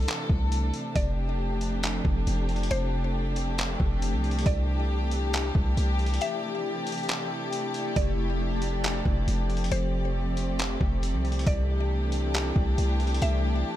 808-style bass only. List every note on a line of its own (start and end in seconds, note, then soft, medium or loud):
0.30 0.72 C2 loud
0.96 2.01 F1 loud
2.05 2.26 F1 loud
2.27 2.69 F1 loud
2.71 3.76 F1 loud
3.80 4.15 F1 loud
4.13 4.44 C2 loud
4.46 5.51 C2 loud
5.55 5.76 C2 loud
5.77 6.19 C2 loud
7.96 9.02 F1 loud
9.06 9.27 F1 loud
9.28 9.70 F1 loud
9.71 10.77 F1 loud
10.81 11.15 F1 loud
11.14 11.45 C2 loud
11.47 12.52 C2 loud
12.56 12.77 C2 loud
12.78 13.20 C2 loud
13.22 13.64 C2 loud